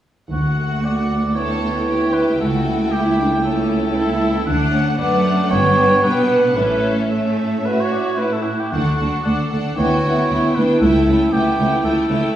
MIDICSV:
0, 0, Header, 1, 7, 480
1, 0, Start_track
1, 0, Key_signature, 2, "major"
1, 0, Tempo, 519481
1, 293, Time_signature, 4, 2, 24, 8
1, 5569, Tempo, 538117
1, 8449, Tempo, 516796
1, 11331, End_track
2, 0, Start_track
2, 0, Title_t, "Violin section"
2, 0, Program_c, 0, 48
2, 289, Note_on_c, 0, 78, 37
2, 1223, Note_off_c, 0, 78, 0
2, 1255, Note_on_c, 0, 79, 32
2, 4099, Note_off_c, 0, 79, 0
2, 4137, Note_on_c, 0, 78, 48
2, 4578, Note_off_c, 0, 78, 0
2, 4618, Note_on_c, 0, 78, 49
2, 5080, Note_off_c, 0, 78, 0
2, 5091, Note_on_c, 0, 79, 43
2, 5563, Note_off_c, 0, 79, 0
2, 5574, Note_on_c, 0, 79, 45
2, 5802, Note_off_c, 0, 79, 0
2, 5816, Note_on_c, 0, 78, 38
2, 6050, Note_off_c, 0, 78, 0
2, 6051, Note_on_c, 0, 76, 41
2, 6521, Note_off_c, 0, 76, 0
2, 6532, Note_on_c, 0, 76, 35
2, 7767, Note_off_c, 0, 76, 0
2, 7973, Note_on_c, 0, 78, 40
2, 8196, Note_off_c, 0, 78, 0
2, 8207, Note_on_c, 0, 78, 31
2, 8423, Note_off_c, 0, 78, 0
2, 8433, Note_on_c, 0, 78, 35
2, 8675, Note_off_c, 0, 78, 0
2, 8686, Note_on_c, 0, 78, 34
2, 8924, Note_on_c, 0, 79, 35
2, 8926, Note_off_c, 0, 78, 0
2, 9167, Note_off_c, 0, 79, 0
2, 9185, Note_on_c, 0, 79, 32
2, 9407, Note_off_c, 0, 79, 0
2, 9418, Note_on_c, 0, 79, 34
2, 9655, Note_off_c, 0, 79, 0
2, 9665, Note_on_c, 0, 79, 36
2, 9895, Note_off_c, 0, 79, 0
2, 9906, Note_on_c, 0, 79, 44
2, 10130, Note_off_c, 0, 79, 0
2, 10141, Note_on_c, 0, 79, 37
2, 10363, Note_off_c, 0, 79, 0
2, 10374, Note_on_c, 0, 79, 39
2, 10595, Note_off_c, 0, 79, 0
2, 10606, Note_on_c, 0, 79, 38
2, 10832, Note_off_c, 0, 79, 0
2, 10843, Note_on_c, 0, 79, 36
2, 11074, Note_off_c, 0, 79, 0
2, 11085, Note_on_c, 0, 79, 39
2, 11312, Note_off_c, 0, 79, 0
2, 11331, End_track
3, 0, Start_track
3, 0, Title_t, "Cor anglais"
3, 0, Program_c, 1, 69
3, 295, Note_on_c, 1, 66, 47
3, 782, Note_on_c, 1, 74, 54
3, 796, Note_off_c, 1, 66, 0
3, 1251, Note_on_c, 1, 73, 56
3, 1265, Note_off_c, 1, 74, 0
3, 1970, Note_on_c, 1, 71, 46
3, 1983, Note_off_c, 1, 73, 0
3, 2219, Note_off_c, 1, 71, 0
3, 2223, Note_on_c, 1, 69, 51
3, 2698, Note_on_c, 1, 67, 52
3, 2712, Note_off_c, 1, 69, 0
3, 3173, Note_off_c, 1, 67, 0
3, 3179, Note_on_c, 1, 69, 67
3, 4118, Note_off_c, 1, 69, 0
3, 4125, Note_on_c, 1, 78, 64
3, 4595, Note_off_c, 1, 78, 0
3, 4605, Note_on_c, 1, 74, 69
3, 5074, Note_off_c, 1, 74, 0
3, 5085, Note_on_c, 1, 73, 73
3, 5556, Note_off_c, 1, 73, 0
3, 5573, Note_on_c, 1, 71, 65
3, 6037, Note_off_c, 1, 71, 0
3, 6048, Note_on_c, 1, 71, 60
3, 6356, Note_off_c, 1, 71, 0
3, 6526, Note_on_c, 1, 69, 44
3, 7017, Note_on_c, 1, 71, 52
3, 7031, Note_off_c, 1, 69, 0
3, 7153, Note_on_c, 1, 73, 45
3, 7166, Note_off_c, 1, 71, 0
3, 7259, Note_on_c, 1, 74, 45
3, 7273, Note_off_c, 1, 73, 0
3, 7377, Note_on_c, 1, 73, 39
3, 7390, Note_off_c, 1, 74, 0
3, 7487, Note_on_c, 1, 71, 45
3, 7501, Note_off_c, 1, 73, 0
3, 7619, Note_on_c, 1, 69, 35
3, 7632, Note_off_c, 1, 71, 0
3, 7711, Note_on_c, 1, 66, 40
3, 7724, Note_off_c, 1, 69, 0
3, 7856, Note_on_c, 1, 67, 41
3, 7869, Note_off_c, 1, 66, 0
3, 7961, Note_off_c, 1, 67, 0
3, 7966, Note_on_c, 1, 66, 49
3, 8434, Note_off_c, 1, 66, 0
3, 8443, Note_on_c, 1, 74, 56
3, 8937, Note_on_c, 1, 73, 58
3, 8951, Note_off_c, 1, 74, 0
3, 9648, Note_on_c, 1, 71, 50
3, 9662, Note_off_c, 1, 73, 0
3, 9880, Note_off_c, 1, 71, 0
3, 9886, Note_on_c, 1, 69, 52
3, 10372, Note_on_c, 1, 67, 61
3, 10386, Note_off_c, 1, 69, 0
3, 10848, Note_off_c, 1, 67, 0
3, 10852, Note_on_c, 1, 69, 72
3, 11331, Note_off_c, 1, 69, 0
3, 11331, End_track
4, 0, Start_track
4, 0, Title_t, "Viola section"
4, 0, Program_c, 2, 48
4, 298, Note_on_c, 2, 57, 30
4, 300, Note_on_c, 2, 66, 36
4, 1227, Note_off_c, 2, 57, 0
4, 1229, Note_off_c, 2, 66, 0
4, 1258, Note_on_c, 2, 64, 38
4, 1260, Note_on_c, 2, 59, 35
4, 2188, Note_off_c, 2, 59, 0
4, 2220, Note_on_c, 2, 57, 36
4, 4100, Note_off_c, 2, 57, 0
4, 4101, Note_off_c, 2, 64, 0
4, 4143, Note_on_c, 2, 62, 43
4, 4146, Note_on_c, 2, 57, 44
4, 4581, Note_off_c, 2, 62, 0
4, 4583, Note_off_c, 2, 57, 0
4, 4611, Note_on_c, 2, 57, 51
4, 4611, Note_on_c, 2, 62, 48
4, 5077, Note_off_c, 2, 57, 0
4, 5077, Note_off_c, 2, 62, 0
4, 5089, Note_on_c, 2, 59, 47
4, 5089, Note_on_c, 2, 62, 50
4, 5551, Note_off_c, 2, 59, 0
4, 5553, Note_off_c, 2, 62, 0
4, 5562, Note_on_c, 2, 59, 48
4, 5564, Note_on_c, 2, 62, 45
4, 6031, Note_off_c, 2, 59, 0
4, 6032, Note_off_c, 2, 62, 0
4, 6041, Note_on_c, 2, 61, 41
4, 6041, Note_on_c, 2, 69, 38
4, 6520, Note_off_c, 2, 61, 0
4, 6530, Note_off_c, 2, 69, 0
4, 6536, Note_on_c, 2, 57, 38
4, 6984, Note_off_c, 2, 57, 0
4, 7018, Note_on_c, 2, 66, 53
4, 7485, Note_off_c, 2, 66, 0
4, 7495, Note_on_c, 2, 64, 38
4, 7973, Note_on_c, 2, 62, 35
4, 7974, Note_off_c, 2, 64, 0
4, 7975, Note_on_c, 2, 69, 33
4, 8206, Note_off_c, 2, 62, 0
4, 8207, Note_off_c, 2, 69, 0
4, 8219, Note_on_c, 2, 69, 32
4, 8221, Note_on_c, 2, 62, 32
4, 8436, Note_off_c, 2, 69, 0
4, 8440, Note_off_c, 2, 62, 0
4, 8447, Note_on_c, 2, 69, 31
4, 8451, Note_on_c, 2, 62, 34
4, 8685, Note_off_c, 2, 69, 0
4, 8687, Note_off_c, 2, 62, 0
4, 8697, Note_on_c, 2, 69, 30
4, 8698, Note_on_c, 2, 62, 32
4, 8932, Note_off_c, 2, 62, 0
4, 8932, Note_off_c, 2, 69, 0
4, 8939, Note_on_c, 2, 59, 39
4, 8940, Note_on_c, 2, 64, 38
4, 9174, Note_off_c, 2, 59, 0
4, 9175, Note_off_c, 2, 64, 0
4, 9187, Note_on_c, 2, 64, 37
4, 9190, Note_on_c, 2, 59, 37
4, 9417, Note_off_c, 2, 59, 0
4, 9419, Note_off_c, 2, 64, 0
4, 9428, Note_on_c, 2, 59, 39
4, 9431, Note_on_c, 2, 64, 39
4, 9650, Note_off_c, 2, 64, 0
4, 9654, Note_off_c, 2, 59, 0
4, 9661, Note_on_c, 2, 64, 35
4, 9665, Note_on_c, 2, 59, 34
4, 9893, Note_off_c, 2, 64, 0
4, 9898, Note_off_c, 2, 59, 0
4, 9903, Note_on_c, 2, 57, 36
4, 9904, Note_on_c, 2, 64, 39
4, 10133, Note_off_c, 2, 57, 0
4, 10133, Note_off_c, 2, 64, 0
4, 10144, Note_on_c, 2, 57, 39
4, 10144, Note_on_c, 2, 64, 35
4, 10368, Note_off_c, 2, 57, 0
4, 10369, Note_off_c, 2, 64, 0
4, 10379, Note_on_c, 2, 57, 38
4, 10380, Note_on_c, 2, 64, 41
4, 10606, Note_off_c, 2, 57, 0
4, 10606, Note_off_c, 2, 64, 0
4, 10617, Note_on_c, 2, 57, 40
4, 10618, Note_on_c, 2, 64, 35
4, 10843, Note_off_c, 2, 57, 0
4, 10843, Note_off_c, 2, 64, 0
4, 10854, Note_on_c, 2, 57, 47
4, 10855, Note_on_c, 2, 64, 48
4, 11080, Note_off_c, 2, 57, 0
4, 11081, Note_off_c, 2, 64, 0
4, 11091, Note_on_c, 2, 57, 43
4, 11093, Note_on_c, 2, 64, 43
4, 11319, Note_off_c, 2, 57, 0
4, 11324, Note_off_c, 2, 64, 0
4, 11331, End_track
5, 0, Start_track
5, 0, Title_t, "Violin section"
5, 0, Program_c, 3, 48
5, 1259, Note_on_c, 3, 69, 42
5, 1709, Note_off_c, 3, 69, 0
5, 1744, Note_on_c, 3, 67, 37
5, 2209, Note_on_c, 3, 66, 40
5, 2227, Note_off_c, 3, 67, 0
5, 2694, Note_on_c, 3, 64, 45
5, 2697, Note_off_c, 3, 66, 0
5, 2939, Note_off_c, 3, 64, 0
5, 2953, Note_on_c, 3, 62, 38
5, 3027, Note_off_c, 3, 62, 0
5, 3176, Note_on_c, 3, 61, 46
5, 3645, Note_on_c, 3, 64, 50
5, 3650, Note_off_c, 3, 61, 0
5, 4129, Note_on_c, 3, 62, 53
5, 4130, Note_off_c, 3, 64, 0
5, 4361, Note_on_c, 3, 61, 51
5, 4366, Note_off_c, 3, 62, 0
5, 4605, Note_off_c, 3, 61, 0
5, 4606, Note_on_c, 3, 59, 48
5, 4839, Note_on_c, 3, 57, 44
5, 4841, Note_off_c, 3, 59, 0
5, 5082, Note_off_c, 3, 57, 0
5, 5083, Note_on_c, 3, 59, 47
5, 6041, Note_off_c, 3, 59, 0
5, 6052, Note_on_c, 3, 61, 42
5, 7704, Note_off_c, 3, 61, 0
5, 8932, Note_on_c, 3, 66, 48
5, 9384, Note_off_c, 3, 66, 0
5, 9415, Note_on_c, 3, 64, 38
5, 9658, Note_off_c, 3, 64, 0
5, 9659, Note_on_c, 3, 62, 42
5, 9894, Note_on_c, 3, 64, 46
5, 9899, Note_off_c, 3, 62, 0
5, 10130, Note_off_c, 3, 64, 0
5, 10138, Note_on_c, 3, 61, 42
5, 10376, Note_off_c, 3, 61, 0
5, 10379, Note_on_c, 3, 59, 43
5, 10842, Note_off_c, 3, 59, 0
5, 10842, Note_on_c, 3, 57, 38
5, 10916, Note_off_c, 3, 57, 0
5, 11087, Note_on_c, 3, 61, 45
5, 11162, Note_off_c, 3, 61, 0
5, 11331, End_track
6, 0, Start_track
6, 0, Title_t, "Cello section"
6, 0, Program_c, 4, 48
6, 302, Note_on_c, 4, 38, 35
6, 2194, Note_off_c, 4, 38, 0
6, 2234, Note_on_c, 4, 37, 36
6, 4107, Note_off_c, 4, 37, 0
6, 4153, Note_on_c, 4, 38, 43
6, 4586, Note_off_c, 4, 38, 0
6, 4624, Note_on_c, 4, 42, 50
6, 5083, Note_off_c, 4, 42, 0
6, 5099, Note_on_c, 4, 43, 48
6, 5573, Note_off_c, 4, 43, 0
6, 5580, Note_on_c, 4, 47, 44
6, 6050, Note_off_c, 4, 47, 0
6, 6063, Note_on_c, 4, 45, 36
6, 7766, Note_off_c, 4, 45, 0
6, 7981, Note_on_c, 4, 38, 34
6, 8053, Note_off_c, 4, 38, 0
6, 8223, Note_on_c, 4, 38, 36
6, 8294, Note_off_c, 4, 38, 0
6, 8451, Note_on_c, 4, 38, 38
6, 8525, Note_off_c, 4, 38, 0
6, 8691, Note_on_c, 4, 38, 41
6, 8766, Note_off_c, 4, 38, 0
6, 8936, Note_on_c, 4, 38, 40
6, 9010, Note_off_c, 4, 38, 0
6, 9177, Note_on_c, 4, 38, 35
6, 9252, Note_off_c, 4, 38, 0
6, 9421, Note_on_c, 4, 38, 40
6, 9496, Note_off_c, 4, 38, 0
6, 9659, Note_on_c, 4, 38, 35
6, 9734, Note_off_c, 4, 38, 0
6, 9899, Note_on_c, 4, 37, 43
6, 9974, Note_off_c, 4, 37, 0
6, 10134, Note_on_c, 4, 37, 43
6, 10208, Note_off_c, 4, 37, 0
6, 10371, Note_on_c, 4, 37, 42
6, 10446, Note_off_c, 4, 37, 0
6, 10612, Note_on_c, 4, 37, 49
6, 10686, Note_off_c, 4, 37, 0
6, 10849, Note_on_c, 4, 37, 43
6, 10923, Note_off_c, 4, 37, 0
6, 11088, Note_on_c, 4, 37, 47
6, 11162, Note_off_c, 4, 37, 0
6, 11331, End_track
7, 0, Start_track
7, 0, Title_t, "Double bass section"
7, 0, Program_c, 5, 48
7, 288, Note_on_c, 5, 38, 35
7, 742, Note_off_c, 5, 38, 0
7, 2228, Note_on_c, 5, 37, 35
7, 2673, Note_off_c, 5, 37, 0
7, 4140, Note_on_c, 5, 38, 48
7, 4579, Note_off_c, 5, 38, 0
7, 5091, Note_on_c, 5, 31, 45
7, 5536, Note_off_c, 5, 31, 0
7, 6046, Note_on_c, 5, 33, 39
7, 6498, Note_off_c, 5, 33, 0
7, 7976, Note_on_c, 5, 38, 39
7, 8196, Note_off_c, 5, 38, 0
7, 8922, Note_on_c, 5, 38, 39
7, 9153, Note_off_c, 5, 38, 0
7, 9893, Note_on_c, 5, 37, 43
7, 10118, Note_off_c, 5, 37, 0
7, 11331, End_track
0, 0, End_of_file